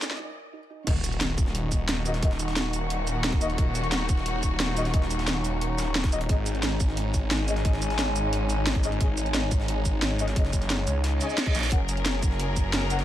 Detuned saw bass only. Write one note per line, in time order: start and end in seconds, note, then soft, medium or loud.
0.00 0.18 D#2 loud
0.87 2.21 D#1 loud
2.23 3.57 D#1 loud
3.58 4.92 D#1 loud
4.94 6.28 D#1 loud
6.29 7.64 G#1 loud
7.65 8.99 G#1 loud
9.01 10.35 G#1 loud
10.36 10.86 F#1 loud
10.87 11.20 C#2 loud
11.55 11.70 A#1 loud
11.72 13.04 F#1 loud